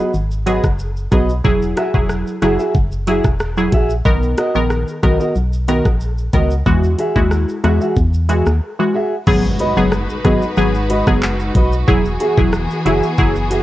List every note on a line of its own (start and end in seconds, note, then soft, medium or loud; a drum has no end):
0.00 0.11 F#3 medium
0.00 0.12 B3 medium
0.00 0.12 F#4 medium
0.00 0.12 G#4 medium
0.00 0.12 B4 medium
0.00 0.12 D#5 medium
0.14 0.60 G#1 loud
0.14 shaker medium
0.31 shaker medium
0.46 0.63 F#3 medium
0.46 0.63 B3 medium
0.46 0.65 F#4 loud
0.46 0.63 G#4 medium
0.46 0.66 B4 loud
0.46 0.66 D#5 loud
0.46 closed hi-hat medium
0.46 shaker medium
0.64 1.08 F#1 medium
0.64 kick medium
0.64 cross-stick medium
0.64 shaker medium
0.79 shaker medium
0.97 shaker soft
1.11 1.41 B1 medium
1.11 1.28 F#3 medium
1.11 1.28 B3 medium
1.11 1.30 F#4 medium
1.11 1.28 G#4 medium
1.11 1.31 B4 medium
1.11 1.31 D#5 loud
1.11 kick medium
1.11 closed hi-hat medium
1.11 shaker medium
1.29 shaker medium
1.44 1.74 E1 loud
1.44 1.90 F#3 loud
1.44 1.90 E4 medium
1.44 1.90 G#4 loud
1.44 kick loud
1.44 shaker medium
1.62 shaker medium
1.76 1.96 F#4 medium
1.76 1.96 G#4 medium
1.76 1.96 E5 medium
1.76 cross-stick loud
1.76 closed hi-hat medium
1.76 shaker medium
1.94 2.24 E1 medium
1.94 2.38 F#3 medium
1.94 2.39 E4 medium
1.94 2.39 G#4 medium
1.94 kick loud
1.94 shaker medium
2.09 cross-stick medium
2.09 shaker medium
2.27 shaker medium
2.42 2.58 F#1 medium
2.42 2.72 F#3 medium
2.42 2.72 E4 medium
2.42 2.59 F#4 medium
2.42 2.59 G#4 medium
2.42 2.73 G#4 medium
2.42 2.58 E5 medium
2.42 cross-stick medium
2.42 closed hi-hat medium
2.42 shaker soft
2.59 2.73 F#4 medium
2.59 2.73 G#4 medium
2.59 2.72 E5 medium
2.59 shaker medium
2.75 3.21 F#1 loud
2.75 kick medium
2.75 shaker medium
2.92 shaker medium
3.07 3.24 F#3 medium
3.07 3.24 E4 medium
3.07 3.26 F#4 medium
3.07 3.26 G#4 medium
3.07 3.24 G#4 medium
3.07 3.27 E5 medium
3.07 closed hi-hat medium
3.07 shaker medium
3.24 3.69 E1 medium
3.24 kick medium
3.24 cross-stick medium
3.24 shaker medium
3.40 cross-stick loud
3.40 shaker medium
3.57 3.72 F#3 medium
3.57 3.72 E4 medium
3.57 3.72 G#4 medium
3.57 shaker medium
3.72 4.02 A#1 loud
3.72 3.91 F#4 medium
3.72 3.92 G#4 loud
3.72 3.92 E5 loud
3.72 kick medium
3.72 closed hi-hat medium
3.72 shaker medium
3.90 shaker medium
4.05 4.35 B1 loud
4.05 4.51 D#3 medium
4.05 4.51 B3 medium
4.05 4.51 A#4 loud
4.05 kick medium
4.05 shaker medium
4.23 shaker medium
4.37 4.56 F#4 medium
4.37 4.57 A#4 medium
4.37 4.57 D#5 loud
4.37 cross-stick loud
4.37 closed hi-hat medium
4.37 shaker medium
4.55 4.85 A#1 medium
4.55 4.99 D#3 medium
4.55 4.99 B3 medium
4.55 5.00 A#4 medium
4.55 shaker medium
4.70 cross-stick medium
4.70 shaker medium
4.88 shaker soft
5.03 5.19 B1 loud
5.03 5.33 D#3 medium
5.03 5.33 B3 medium
5.03 5.20 F#4 medium
5.03 5.20 A#4 medium
5.03 5.33 A#4 medium
5.03 5.19 D#5 medium
5.03 kick medium
5.03 cross-stick medium
5.03 closed hi-hat medium
5.03 shaker soft
5.20 5.34 F#4 medium
5.20 5.34 A#4 medium
5.20 5.33 D#5 medium
5.20 shaker medium
5.35 5.82 B1 loud
5.35 shaker medium
5.53 shaker medium
5.68 5.84 D#3 medium
5.68 5.85 B3 medium
5.68 5.87 F#4 medium
5.68 5.85 A#4 medium
5.68 5.87 A#4 medium
5.68 5.88 D#5 loud
5.68 closed hi-hat medium
5.68 shaker medium
5.85 6.29 A#1 medium
5.85 kick medium
5.85 cross-stick medium
5.85 shaker medium
6.01 shaker medium
6.18 shaker medium
6.33 6.63 C#2 loud
6.33 6.50 D#3 medium
6.33 6.50 B3 medium
6.33 6.52 F#4 medium
6.33 6.53 A#4 medium
6.33 6.50 A#4 medium
6.33 6.53 D#5 medium
6.33 kick medium
6.33 closed hi-hat medium
6.33 shaker medium
6.51 shaker medium
6.66 6.96 E2 loud
6.66 7.12 E3 loud
6.66 7.12 G#3 medium
6.66 7.12 F#4 loud
6.66 kick loud
6.66 shaker medium
6.84 shaker medium
6.98 7.17 F#4 medium
6.98 7.18 G#4 medium
6.98 7.18 E5 medium
6.98 closed hi-hat medium
6.98 shaker medium
7.16 7.45 D#2 medium
7.16 7.60 G#3 medium
7.16 7.60 E4 medium
7.16 7.60 F#4 medium
7.16 kick loud
7.16 shaker medium
7.31 cross-stick medium
7.31 shaker medium
7.49 shaker soft
7.63 7.80 E2 medium
7.63 7.94 E3 medium
7.63 7.94 G#3 medium
7.63 7.81 F#4 medium
7.63 7.94 F#4 medium
7.63 7.80 G#4 medium
7.63 7.80 E5 loud
7.63 cross-stick medium
7.63 closed hi-hat medium
7.63 shaker soft
7.81 7.95 F#4 soft
7.81 7.95 G#4 medium
7.81 7.94 E5 medium
7.81 shaker medium
7.96 8.42 E2 loud
7.96 kick medium
7.96 shaker medium
8.14 shaker medium
8.29 8.45 E3 medium
8.29 8.45 G#3 medium
8.29 8.48 F#4 medium
8.29 8.46 F#4 medium
8.29 8.48 G#4 medium
8.29 8.49 E5 medium
8.29 closed hi-hat medium
8.29 shaker medium
8.46 8.60 D#2 loud
8.46 cross-stick medium
8.46 shaker medium
8.79 8.93 E3 medium
8.79 8.94 G#3 medium
8.79 8.94 F#4 medium
8.94 9.13 F#4 medium
8.94 9.13 G#4 medium
8.94 9.14 E5 loud
9.27 9.57 G#1 loud
9.27 9.43 F#3 loud
9.27 11.85 G#3 medium
9.27 9.43 B3 medium
9.27 11.85 D#4 medium
9.27 13.63 F#4 medium
9.27 9.43 G#4 loud
9.27 11.85 B4 medium
9.27 kick loud
9.27 crash loud
9.27 impact medium
9.27 shaker medium
9.45 shaker medium
9.59 9.78 F#4 medium
9.59 9.79 B4 medium
9.59 9.79 D#5 loud
9.59 closed hi-hat medium
9.59 shaker medium
9.77 10.06 F#1 medium
9.77 9.91 F#3 medium
9.77 9.91 B3 medium
9.77 9.91 G#4 medium
9.77 shaker medium
9.92 cross-stick loud
9.92 shaker medium
10.10 shaker medium
10.24 10.41 G#1 loud
10.24 10.41 F#3 medium
10.24 10.41 B3 medium
10.24 10.43 F#4 medium
10.24 10.41 G#4 medium
10.24 10.44 B4 medium
10.24 10.44 D#5 medium
10.24 kick loud
10.24 cross-stick medium
10.24 closed hi-hat medium
10.24 shaker soft
10.42 shaker medium
10.57 11.03 G#1 loud
10.57 10.74 F#3 medium
10.57 10.74 B3 medium
10.57 10.74 G#4 loud
10.57 shaker medium
10.75 shaker medium
10.90 11.09 F#4 medium
10.90 11.09 B4 loud
10.90 11.09 D#5 loud
10.90 closed hi-hat medium
10.90 shaker medium
11.07 11.51 F#1 medium
11.07 11.22 F#3 medium
11.07 11.22 B3 medium
11.07 11.22 G#4 medium
11.07 kick medium
11.07 cross-stick medium
11.07 shaker medium
11.22 clap loud
11.22 shaker medium
11.40 shaker medium
11.55 11.85 B1 loud
11.55 11.74 F#4 medium
11.55 11.74 B4 loud
11.55 11.75 D#5 loud
11.55 kick medium
11.55 closed hi-hat medium
11.55 shaker medium
11.73 shaker medium
11.88 12.17 E1 loud
11.88 13.63 E3 medium
11.88 12.04 F#3 loud
11.88 13.63 B3 medium
11.88 12.04 E4 medium
11.88 13.63 G#4 medium
11.88 12.04 G#4 loud
11.88 kick loud
11.88 shaker medium
12.05 shaker medium
12.20 12.39 F#4 medium
12.20 12.40 G#4 medium
12.20 12.40 E5 loud
12.20 closed hi-hat medium
12.20 shaker medium
12.38 12.67 E1 medium
12.38 12.52 F#3 medium
12.38 12.52 E4 medium
12.38 12.52 G#4 medium
12.38 kick loud
12.38 shaker medium
12.53 cross-stick loud
12.53 shaker medium
12.70 shaker medium
12.85 13.01 F#1 medium
12.85 13.02 F#3 medium
12.85 13.02 E4 medium
12.85 13.04 F#4 medium
12.85 13.05 G#4 medium
12.85 13.02 G#4 medium
12.85 13.05 E5 loud
12.85 closed hi-hat medium
12.85 shaker soft
13.03 shaker medium
13.18 13.63 F#1 loud
13.18 13.34 F#3 loud
13.18 13.35 E4 medium
13.18 13.35 G#4 loud
13.18 kick medium
13.18 shaker medium
13.36 shaker medium
13.50 13.63 F#4 medium
13.50 13.63 G#4 loud
13.50 13.63 E5 medium
13.50 closed hi-hat medium
13.50 shaker medium